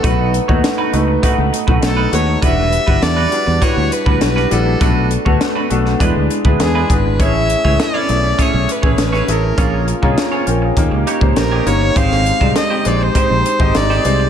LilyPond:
<<
  \new Staff \with { instrumentName = "Fiddle" } { \time 4/4 \key e \mixolydian \tempo 4 = 101 a'8 r2 r8 a'8 cis''8 | e''4 d''4 cis''8 b'8 b'8 a'8~ | a'8 r2 r8 gis'8 b'8 | e''4 d''4 cis''8 b'8 b'8 ais'8~ |
ais'8 r2 r8 ais'8 cis''8 | eis''4 dis''8 d''16 bis'4~ bis'16 d''4 | }
  \new Staff \with { instrumentName = "Clean electric guitar" } { \time 4/4 \key e \mixolydian <a dis' fis' b'>8 r16 <a dis' fis' cis''>16 r16 <a dis' fis' b'>16 r8 <a dis' fis' b'>16 r8 <a dis' fis' b'>16 r16 <a dis' fis' b'>16 r8 | <g d' fis' b'>8 r16 <g d' fis' b'>16 r16 <g d' fis' b'>16 r8 <g d' fis' b'>16 r8 <g d' fis' b'>16 r16 <g d' fis' b'>16 r8 | <a d' fis' b'>8 r16 <a d' fis' cis''>16 r16 <a d' fis' b'>16 r8 <gis d' e' b'>16 r8 <gis d' e' b'>16 r16 <gis d' e' b'>16 r8 | <cis' e' gis' cis''>8 r16 <cis' e' gis' cis''>16 r16 <cis' e' gis' cis''>16 r8 <cis' e' gis' cis''>16 r8 <cis' e' gis' cis''>16 r16 <cis' e' gis' cis''>16 r8 |
<cis' eis' gis' cis''>8 r16 <cis' eis' gis' dis''>16 r16 <cis' eis' gis' cis''>16 r4 <ais dis' g' cis''>16 r8 <ais dis' g' cis''>16 r8 | <bis dis' g' bis'>8 r16 <bis dis' g' bis'>16 r16 <bis dis' g' bis'>16 r8 <bis dis' g' bis'>16 r8 <bis dis' g' bis'>16 r16 <bis dis' g' bis'>16 r8 | }
  \new Staff \with { instrumentName = "Grand piano" } { \time 4/4 \key e \mixolydian << { r1 | r1 | r1 | r1 |
r4 cis''16 <c'' gis''>16 <ais' g''>16 <gis' eis''>8 r4. r16 | r1 | } \\ { <a b dis' fis' b'>8. <a b dis' fis' b'>8. <a b dis' fis' b'>8 <a b dis' fis' b'>8. <a b dis' fis' b'>8. <a b dis' fis' b'>8 | <g d' e' fis' b'>8. <g d' e' fis' b'>8. <g d' e' fis' b'>8 <g d' e' fis' b'>8. <g d' e' fis' b'>8. <g d' e' fis' b'>8 | <a b d' fis' b'>8. <a b d' fis' b'>8. <a b d' fis' a'>8 <gis b d' e' b'>8. <gis b d' e' gis'>8. <gis b d' e' b'>8 | <a cis' e' gis' cis''>8. <a cis' e' gis' b'>8. <a cis' e' gis' e''>8 <a cis' e' gis' e''>8. <a cis' e' gis' b'>8. <a cis' e' gis' e''>8 |
<ais cis' eis' gis' cis''>8. <ais cis' eis' gis' cis''>8. r8 <ais cis' dis' g' cis''>8. <ais cis' dis' g' c''>8. <ais cis' dis' g' cis''>8 | <gis bis dis' g' bis'>8. <gis bis dis' g' d''>8. <gis bis dis' g' bis'>8 <gis bis dis' g' bis'>8. <gis bis dis' g' dis''>8. <gis bis dis' g' bis'>8 | } >> }
  \new Staff \with { instrumentName = "Fretless electric bass" } { \clef bass \time 4/4 \key e \mixolydian b,,8. dis,16 r8 cis,8 r16 cis,16 r16 b,,16 b,,8 dis,8 | e,,8. g,,16 e,8 r16 e,16 r16 d,16 r16 d,16 b,,8 ais,,8 | b,,8. d,16 r8 b,,8 e,16 d,16 r16 d,16 e,8 gis,,8 | a,,8. cis,16 r8 b,,8 r16 b,,16 r16 a,,16 a,,8 a,,8 |
ais,,8. c,16 r8 ais,,8 dis,16 cis,16 r16 cis,16 ais,,8 g,,8 | gis,,8. bis,,16 r8 ais,,8 r16 ais,,16 r16 gis,,16 gis,,8 bis,,8 | }
  \new DrumStaff \with { instrumentName = "Drums" } \drummode { \time 4/4 <hh bd>8 hh16 bd16 <hh sn>8 hh8 <hh bd>8 hh16 bd16 <hh sn>8 hh8 | <hh bd>8 hh16 bd16 <hh sn>8 hh8 <hh bd>8 hh16 bd16 <hh sn>16 sn16 hh8 | <hh bd>8 hh16 bd16 <hh sn>8 hh16 sn16 <hh bd>8 hh16 bd16 <hh sn>8 <hh bd>8 | <hh bd>8 hh16 bd16 <hh sn>8 hh8 <hh bd>8 hh16 bd16 <hh sn>16 sn16 hh8 |
<hh bd>8 hh16 bd16 <hh sn>8 hh8 <hh bd>8 hh16 bd16 <hh sn>8 hh8 | <hh bd>16 sn16 hh16 bd16 <hh sn>8 hh8 <hh bd>8 hh16 bd16 <hh sn>16 sn16 hh8 | }
>>